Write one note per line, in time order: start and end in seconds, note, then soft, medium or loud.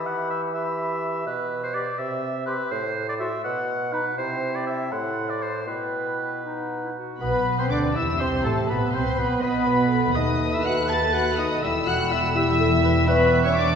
0.00 1.23 E3 medium
0.00 0.53 G4 soft
0.00 0.53 B5 medium
0.06 0.30 F#5 medium
0.30 0.41 E5 medium
0.54 1.25 G4 medium
0.54 1.25 E5 medium
0.54 1.25 B5 medium
1.26 1.86 B2 medium
1.26 1.62 B4 medium
1.63 1.75 C5 medium
1.74 1.83 G4 medium
1.74 2.00 D5 medium
1.74 1.85 D6 medium
1.99 2.59 C3 medium
1.99 2.45 E5 medium
2.46 2.55 G4 medium
2.46 2.73 B4 medium
2.46 2.58 C6 medium
2.71 3.32 A2 medium
2.71 3.08 C5 medium
3.09 3.14 D5 medium
3.20 3.28 F#4 medium
3.20 3.43 E5 medium
3.20 3.32 C6 medium
3.44 4.05 B2 medium
3.44 3.94 F#5 medium
3.92 4.01 D#4 medium
3.92 4.17 B4 medium
3.92 4.05 B5 medium
4.17 4.88 C3 medium
4.17 4.87 E4 medium
4.17 4.57 C5 medium
4.17 4.93 G5 medium
4.55 4.66 D5 medium
4.67 4.93 E5 medium
4.91 5.69 A2 medium
4.91 5.66 E4 medium
4.91 5.31 F#5 medium
4.91 5.66 C6 medium
5.30 5.44 D5 medium
5.42 5.67 C5 medium
5.67 6.96 B2 soft
5.67 6.42 E4 soft
5.67 6.93 B4 medium
5.67 6.43 G5 soft
6.45 6.80 D#4 soft
6.45 6.95 F#5 soft
6.85 6.90 E4 soft
6.96 7.20 F#4 soft
7.20 7.55 B1 medium
7.20 7.55 B2 medium
7.20 7.60 B3 medium
7.20 7.56 B3 soft
7.20 7.91 B4 medium
7.20 7.60 B4 medium
7.20 7.56 B4 medium
7.20 7.61 B4 medium
7.20 7.56 B5 medium
7.58 7.70 C3 soft
7.58 7.71 C4 soft
7.58 7.73 C4 medium
7.58 7.72 C5 soft
7.58 7.64 C5 soft
7.58 7.73 C5 soft
7.58 7.64 C6 medium
7.58 7.65 C6 medium
7.70 7.95 D2 soft
7.70 7.94 D3 medium
7.70 7.97 D4 medium
7.70 7.96 D4 medium
7.70 7.97 D5 medium
7.70 7.95 D5 soft
7.70 7.78 D6 medium
7.95 8.19 E2 medium
7.95 8.19 E3 medium
7.95 8.20 E4 medium
7.95 8.22 E4 medium
7.95 8.68 G4 soft
7.95 8.03 E5 medium
7.95 8.19 E5 medium
7.95 8.22 E5 medium
7.95 8.19 E6 medium
7.95 8.22 E6 medium
8.19 8.44 C2 soft
8.19 8.44 C3 medium
8.19 8.44 C4 medium
8.19 8.47 C4 medium
8.19 8.44 C5 medium
8.19 8.31 C5 medium
8.19 8.44 C5 soft
8.19 8.45 C6 medium
8.19 8.47 C6 medium
8.44 8.69 A1 medium
8.44 8.69 A2 medium
8.44 8.70 A3 medium
8.44 8.70 A3 soft
8.44 8.52 A4 soft
8.44 8.55 A4 medium
8.44 8.69 A4 medium
8.44 8.69 A5 medium
8.44 8.71 A5 medium
8.69 8.94 B1 soft
8.69 8.94 B2 soft
8.69 8.95 B3 soft
8.69 8.94 B3 soft
8.69 9.42 B4 medium
8.69 8.93 B4 soft
8.69 8.95 B4 soft
8.69 8.81 B4 medium
8.69 8.94 B5 medium
8.93 9.01 C2 medium
8.93 9.01 C3 medium
8.93 9.20 C4 medium
8.93 9.18 C4 medium
8.93 9.19 C5 medium
8.93 9.18 C5 medium
8.93 9.05 C5 medium
8.93 9.18 C6 medium
8.93 9.20 C6 medium
9.17 9.26 B1 medium
9.17 9.25 B2 medium
9.17 9.42 B3 medium
9.17 9.41 B4 soft
9.17 9.41 B4 medium
9.17 9.41 B4 soft
9.17 9.42 B5 medium
9.17 9.41 B5 medium
9.42 10.14 B1 medium
9.42 10.14 B2 medium
9.42 10.14 B3 medium
9.42 10.17 B4 medium
9.42 10.14 B4 medium
9.42 9.67 D#5 medium
9.42 10.14 B5 medium
9.66 9.91 B4 soft
9.91 10.15 A4 soft
10.14 11.58 D#2 medium
10.14 11.59 A3 soft
10.14 10.52 D#4 medium
10.14 11.63 B4 medium
10.14 10.51 D#5 medium
10.14 10.54 D#5 medium
10.14 10.52 D#5 medium
10.14 12.82 B5 medium
10.14 10.52 D#6 medium
10.52 10.65 E4 medium
10.52 10.67 E5 medium
10.52 10.65 E5 medium
10.52 10.65 E6 medium
10.65 10.77 F#4 medium
10.65 10.73 F#5 medium
10.65 10.88 F#5 medium
10.65 10.91 F#5 medium
10.65 10.90 F#6 medium
10.89 11.14 A4 medium
10.89 11.13 A5 medium
10.89 11.14 A5 medium
10.89 11.14 A6 medium
11.13 11.38 F#4 medium
11.13 11.25 F#5 medium
11.13 11.26 F#5 medium
11.13 11.39 F#5 medium
11.13 11.38 F#6 medium
11.38 11.49 D#4 medium
11.38 11.64 D#5 medium
11.38 11.63 D#5 medium
11.38 11.50 D#5 medium
11.38 11.63 D#6 medium
11.62 13.75 E1 medium
11.62 13.75 E2 medium
11.62 13.05 G3 medium
11.62 11.86 E4 medium
11.62 12.34 A4 medium
11.62 11.88 E5 medium
11.62 11.71 E5 medium
11.62 11.90 E5 medium
11.62 11.87 E6 medium
11.86 12.11 F#4 medium
11.86 12.10 F#5 medium
11.86 11.95 F#5 medium
11.86 12.13 F#5 medium
11.86 12.11 F#6 medium
12.11 12.34 E4 medium
12.11 12.22 E5 medium
12.11 12.19 E5 medium
12.11 12.36 E5 medium
12.11 12.34 E6 medium
12.35 13.06 E4 medium
12.35 12.59 G4 medium
12.35 13.06 E5 medium
12.35 13.07 E5 medium
12.35 13.06 E6 medium
12.60 12.68 A4 medium
12.83 12.91 B4 medium
13.07 13.75 G3 medium
13.07 13.44 B3 medium
13.07 13.46 B4 medium
13.07 13.44 B4 medium
13.07 13.43 B4 medium
13.07 13.75 E5 medium
13.07 13.44 B5 medium
13.07 13.75 C#6 medium
13.44 13.56 C#4 medium
13.44 13.56 C#5 medium
13.44 13.50 C#5 medium
13.44 13.58 C#5 medium
13.44 13.56 C#6 medium
13.55 13.75 D4 medium
13.55 13.75 D5 medium
13.55 13.75 D6 medium